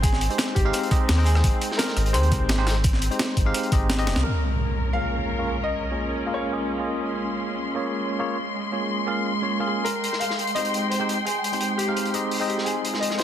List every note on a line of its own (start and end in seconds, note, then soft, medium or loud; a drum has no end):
0.00 0.29 G#1 medium
0.00 4.21 C4 medium
0.00 0.57 G#4 medium
0.00 kick loud
0.00 closed hi-hat loud
0.00 closed hi-hat medium
0.13 snare soft
0.21 closed hi-hat medium
0.29 0.63 G#3 medium
0.29 0.63 C4 medium
0.29 0.63 D#4 medium
0.29 0.63 G4 medium
0.29 0.63 C5 medium
0.29 closed hi-hat soft
0.38 snare loud
0.38 closed hi-hat medium
0.55 0.72 G#1 loud
0.55 1.28 G4 medium
0.55 kick medium
0.55 closed hi-hat medium
0.65 0.89 G#3 medium
0.65 0.89 C4 medium
0.65 0.89 D#4 medium
0.65 0.89 G4 medium
0.65 0.90 F5 loud
0.73 cross-stick soft
0.73 closed hi-hat medium
0.83 closed hi-hat soft
0.91 1.15 G#3 medium
0.91 1.16 C4 medium
0.91 1.16 D#4 medium
0.91 1.16 G4 medium
0.91 1.16 D#5 loud
0.91 kick loud
0.91 closed hi-hat medium
1.09 1.43 D#2 loud
1.09 snare loud
1.09 closed hi-hat medium
1.09 open hi-hat medium
1.17 2.12 G#3 medium
1.17 2.12 C4 medium
1.17 2.12 D#4 medium
1.17 2.13 D#5 medium
1.17 2.12 G5 medium
1.17 cross-stick soft
1.25 1.58 G#4 loud
1.25 closed hi-hat medium
1.25 open hi-hat medium
1.35 cross-stick medium
1.35 snare soft
1.44 1.52 G#1 loud
1.44 kick loud
1.44 closed hi-hat loud
1.44 closed hi-hat medium
1.61 closed hi-hat medium
1.71 snare soft
1.78 2.15 A#4 medium
1.78 snare loud
1.78 closed hi-hat loud
1.88 snare medium
1.97 2.16 G#1 loud
1.97 cross-stick soft
1.97 closed hi-hat medium
2.06 closed hi-hat soft
2.13 2.33 D#2 loud
2.13 2.55 G#3 loud
2.13 2.56 C4 medium
2.13 2.56 D#4 medium
2.13 2.56 G4 medium
2.13 3.85 C5 medium
2.13 2.57 C5 loud
2.13 closed hi-hat loud
2.13 closed hi-hat medium
2.23 closed hi-hat soft
2.32 2.40 C2 medium
2.32 kick medium
2.32 closed hi-hat medium
2.41 3.09 G#1 loud
2.49 snare loud
2.49 closed hi-hat medium
2.49 closed hi-hat loud
2.58 2.75 G#3 loud
2.58 2.75 C4 medium
2.58 2.75 D#4 medium
2.58 2.75 G4 medium
2.58 2.75 C5 loud
2.67 cross-stick soft
2.67 snare loud
2.67 closed hi-hat medium
2.67 open hi-hat medium
2.84 kick loud
2.84 closed hi-hat medium
2.84 closed hi-hat loud
2.93 snare soft
3.02 closed hi-hat medium
3.10 3.44 G#3 medium
3.10 3.44 C4 medium
3.10 3.44 D#4 medium
3.10 3.44 G4 medium
3.10 3.44 C5 medium
3.10 closed hi-hat soft
3.19 snare loud
3.19 closed hi-hat medium
3.19 closed hi-hat loud
3.37 3.53 G#1 loud
3.37 kick medium
3.37 closed hi-hat medium
3.45 3.70 G#3 medium
3.45 3.70 C4 medium
3.45 3.70 D#4 medium
3.45 3.70 G4 medium
3.45 3.70 F5 loud
3.54 cross-stick soft
3.54 closed hi-hat loud
3.54 closed hi-hat medium
3.63 closed hi-hat soft
3.72 3.89 G#1 loud
3.72 3.96 G#3 medium
3.72 3.96 C4 medium
3.72 3.96 D#4 medium
3.72 3.97 G4 medium
3.72 3.97 D#5 loud
3.72 kick loud
3.72 closed hi-hat medium
3.90 4.09 G#1 medium
3.90 snare loud
3.90 closed hi-hat loud
3.90 closed hi-hat medium
3.98 4.23 G#3 medium
3.98 4.24 C4 medium
3.98 4.24 D#4 medium
3.98 4.24 G4 medium
3.98 4.24 D#5 loud
3.98 cross-stick soft
3.98 closed hi-hat soft
4.07 4.15 D#1 loud
4.07 snare medium
4.07 closed hi-hat medium
4.07 open hi-hat medium
4.16 4.24 C2 loud
4.16 snare loud
4.23 13.23 G#3 medium
4.23 9.82 C#4 medium
4.23 4.96 A#4 medium
4.23 7.03 A#4 medium
4.23 crash medium
4.23 impact medium
4.93 5.36 A#3 medium
4.93 5.36 C#4 medium
4.93 5.37 F4 medium
4.93 5.37 G#4 medium
4.93 5.37 C#5 medium
4.93 5.66 F5 loud
5.38 5.55 A#3 medium
5.38 5.55 C#4 medium
5.38 5.56 F4 medium
5.38 5.56 G#4 medium
5.38 5.56 C#5 loud
5.64 6.37 D#5 medium
5.91 6.24 A#3 medium
5.91 6.24 C#4 medium
5.91 6.24 F4 medium
5.91 6.25 G#4 medium
5.91 6.25 C#5 medium
6.26 6.50 A#3 medium
6.26 6.51 C#4 medium
6.26 6.51 F4 medium
6.26 6.51 G#4 medium
6.26 6.51 F5 medium
6.34 6.83 C#5 medium
6.52 6.77 A#3 medium
6.52 6.77 C#4 medium
6.52 6.77 F4 medium
6.52 6.77 G#4 medium
6.52 6.77 D#5 medium
6.78 7.73 A#3 medium
6.78 7.73 C#4 medium
6.78 7.74 F4 medium
6.78 7.74 G#4 medium
6.78 7.74 D#5 medium
7.05 13.23 C6 medium
7.74 8.17 A#3 medium
7.74 8.17 C#4 medium
7.74 8.17 F4 medium
7.74 8.18 G#4 medium
7.74 8.18 C#5 medium
8.19 8.36 A#3 medium
8.19 8.36 C#4 medium
8.19 8.36 F4 medium
8.19 8.37 G#4 medium
8.19 8.37 C#5 loud
8.72 9.05 A#3 medium
8.72 9.05 C#4 medium
8.72 9.05 F4 medium
8.72 9.05 G#4 medium
8.72 9.05 C#5 medium
9.07 9.31 A#3 medium
9.07 9.31 C#4 medium
9.07 9.31 F4 medium
9.07 9.31 G#4 medium
9.07 9.32 F5 loud
9.42 9.58 A#3 medium
9.42 9.58 C#4 medium
9.42 9.58 F4 medium
9.42 9.58 G#4 medium
9.42 9.58 C#5 medium
9.59 9.85 A#3 medium
9.59 9.85 C#4 medium
9.59 9.85 F4 medium
9.59 9.85 G#4 medium
9.59 9.85 F5 medium
9.67 9.84 G#4 medium
9.85 10.22 A#4 loud
9.85 12.64 G5 medium
9.85 closed hi-hat medium
10.04 closed hi-hat medium
10.13 snare soft
10.20 10.57 F5 medium
10.20 closed hi-hat medium
10.30 snare soft
10.39 closed hi-hat medium
10.47 closed hi-hat soft
10.55 10.98 G#3 medium
10.55 10.98 C4 medium
10.55 10.98 D#4 medium
10.55 10.98 G4 medium
10.55 10.99 C5 medium
10.55 10.92 D#5 loud
10.55 closed hi-hat medium
10.65 closed hi-hat soft
10.74 closed hi-hat medium
10.90 11.27 C5 medium
10.90 closed hi-hat medium
11.00 11.17 G#3 medium
11.00 11.17 C4 medium
11.00 11.17 D#4 medium
11.00 11.17 G4 medium
11.00 11.17 C5 loud
11.09 closed hi-hat medium
11.25 11.80 G#4 medium
11.25 closed hi-hat medium
11.44 closed hi-hat medium
11.52 11.86 G#3 medium
11.52 11.86 C4 medium
11.52 11.86 D#4 medium
11.52 11.86 G4 medium
11.52 11.86 C5 medium
11.52 closed hi-hat soft
11.61 closed hi-hat medium
11.78 12.46 G4 medium
11.78 closed hi-hat medium
11.87 12.12 G#3 medium
11.87 12.12 C4 medium
11.87 12.12 D#4 medium
11.87 12.12 G4 medium
11.87 12.12 F5 medium
11.97 closed hi-hat medium
12.05 closed hi-hat soft
12.14 12.38 G#3 medium
12.14 12.38 C4 medium
12.14 12.39 D#4 medium
12.14 12.39 G4 medium
12.14 12.39 D#5 medium
12.14 closed hi-hat medium
12.31 open hi-hat medium
12.40 13.23 G#3 medium
12.40 13.23 C4 medium
12.40 13.23 D#4 medium
12.40 13.23 D#5 medium
12.40 13.23 G5 medium
12.48 12.67 G4 medium
12.48 closed hi-hat medium
12.58 snare soft
12.65 13.23 F4 medium
12.65 12.99 G#4 medium
12.65 closed hi-hat medium
12.65 riser medium
12.85 closed hi-hat medium
12.94 snare soft
13.00 13.19 D#5 medium
13.00 closed hi-hat medium
13.10 snare soft
13.18 13.23 C5 medium
13.18 snare medium
13.18 closed hi-hat medium